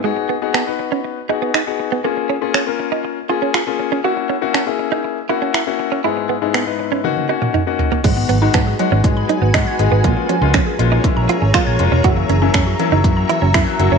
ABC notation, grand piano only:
X:1
M:4/4
L:1/16
Q:1/4=120
K:G#m
V:1 name="Grand piano"
[B,DFG]2 z [B,DFG]2 [B,DFB]4 z [B,DFG]2 z [B,DFG]2 z | [A,C^EG]2 z [A,CEG]2 [A,CEA]4 z [A,CEG]2 z [A,CEG]2 z | [A,CEF]2 z [A,CEF]2 [A,CEG]4 z [A,CEF]2 z [A,CEF]2 z | [G,,B,DEG]2 z [G,,B,DEG]2 [G,,B,DEB]3 [A,CDF]2 [A,CDF]2 z [A,CDF]2 z |
[G,B,DF]2 z [G,B,DF]2 z [G,B,DF]2 [G,B,DG]3 z [G,B,DF]2 [G,B,DG]2 | [G,A,C^E]2 z [G,A,CE]2 z [G,A,CE]2 [G,A,C=E]3 z [G,A,C^E]2 [G,A,CE]2 | [F,A,CE]2 z [F,A,CE]2 z [F,A,CE]2 [F,A,CE]3 z [F,A,CE]2 [F,A,CE]2 |]